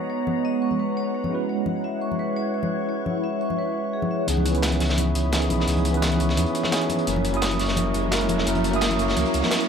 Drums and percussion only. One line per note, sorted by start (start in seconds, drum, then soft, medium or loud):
0.27 high conga medium
0.71 high conga medium
1.24 high conga medium
1.66 high conga medium
2.12 high conga medium
2.63 high conga medium
3.06 high conga medium
3.50 high conga medium
4.02 high conga medium
4.28 closed hi-hat medium
4.37 high conga medium
4.46 closed hi-hat medium
4.55 closed hi-hat soft
4.62 snare loud
4.62 closed hi-hat medium
4.72 closed hi-hat soft
4.72 high conga medium
4.80 snare soft
4.80 closed hi-hat medium
4.80 open hi-hat medium
4.89 snare medium
4.97 closed hi-hat medium
4.97 high conga loud
5.15 closed hi-hat medium
5.25 high conga medium
5.32 snare loud
5.32 closed hi-hat medium
5.42 closed hi-hat soft
5.50 closed hi-hat medium
5.50 high conga medium
5.60 snare soft
5.68 closed hi-hat medium
5.77 closed hi-hat soft
5.77 high conga medium
5.85 closed hi-hat medium
5.94 closed hi-hat soft
6.02 snare loud
6.02 closed hi-hat medium
6.12 closed hi-hat soft
6.12 high conga medium
6.20 closed hi-hat medium
6.29 snare soft
6.37 closed hi-hat medium
6.37 high conga loud
6.46 closed hi-hat soft
6.55 closed hi-hat medium
6.63 snare medium
6.63 high conga medium
6.72 snare loud
6.72 closed hi-hat medium
6.81 closed hi-hat soft
6.89 closed hi-hat medium
6.89 high conga medium
6.99 closed hi-hat soft
7.07 closed hi-hat medium
7.16 high conga loud
7.25 closed hi-hat medium
7.34 closed hi-hat soft
7.42 snare loud
7.42 closed hi-hat medium
7.51 closed hi-hat soft
7.51 high conga medium
7.59 snare soft
7.59 closed hi-hat medium
7.59 open hi-hat medium
7.68 snare medium
7.77 closed hi-hat medium
7.77 high conga loud
7.94 closed hi-hat medium
8.03 high conga medium
8.12 snare loud
8.12 closed hi-hat medium
8.21 closed hi-hat soft
8.29 closed hi-hat medium
8.29 high conga loud
8.38 snare soft
8.47 closed hi-hat medium
8.55 closed hi-hat soft
8.55 high conga medium
8.64 closed hi-hat medium
8.73 closed hi-hat soft
8.81 snare loud
8.81 closed hi-hat medium
8.90 closed hi-hat soft
8.90 high conga medium
8.99 closed hi-hat medium
9.08 snare soft
9.16 closed hi-hat medium
9.16 high conga medium
9.26 closed hi-hat soft
9.34 closed hi-hat medium
9.43 snare medium
9.43 high conga medium
9.51 snare loud
9.51 closed hi-hat medium
9.61 closed hi-hat soft